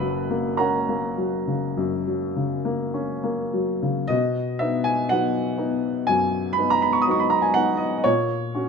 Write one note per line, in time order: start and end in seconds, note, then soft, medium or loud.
0.00 1.73 F#1 medium
0.00 1.74 F#2 medium
0.00 0.19 C#3 medium
0.00 0.48 F#3 medium
0.00 0.56 B4 medium
0.00 0.56 F#5 medium
0.00 0.59 B5 loud
0.30 0.77 A#3 medium
0.57 1.06 C#4 medium
0.57 2.90 A#4 medium
0.57 2.90 F#5 medium
0.57 2.93 A#5 medium
0.89 1.36 A#3 soft
1.18 1.66 F#3 medium
1.47 1.96 C#3 soft
1.77 4.06 F#2 medium
2.07 2.54 F#3 soft
2.36 2.83 C#3 medium
2.65 3.11 A#3 medium
2.94 3.41 C#4 medium
3.24 3.72 A#3 medium
3.53 4.00 F#3 medium
3.82 4.10 C#3 soft
4.08 4.59 B2 medium
4.08 4.60 D#5 loud
4.59 5.05 B3 medium
4.59 5.05 D#4 medium
4.59 4.84 E5 medium
4.84 5.09 G#5 medium
5.09 5.54 F#3 medium
5.09 5.55 B3 medium
5.09 5.55 D#4 medium
5.09 6.07 F#5 medium
5.57 6.03 B3 soft
5.57 6.04 D#4 medium
6.07 6.57 F#2 medium
6.07 6.52 G#5 medium
6.53 6.70 B5 medium
6.58 7.03 B3 soft
6.58 7.03 D#4 soft
6.70 6.83 A#5 medium
6.82 6.93 B5 medium
6.93 7.02 C#6 medium
7.02 7.11 D#6 medium
7.07 7.51 F#3 soft
7.07 7.52 B3 soft
7.07 7.52 D#4 medium
7.11 7.21 C#6 medium
7.19 7.31 B5 medium
7.30 7.42 A#5 medium
7.42 7.55 G#5 medium
7.54 8.01 B3 soft
7.54 8.01 D#4 medium
7.54 7.79 F#5 medium
7.77 7.96 D#5 medium
7.98 8.05 D#5 medium
8.04 8.53 A#2 medium
8.04 8.69 C#5 medium
8.55 8.69 C#4 medium
8.55 8.69 F#4 medium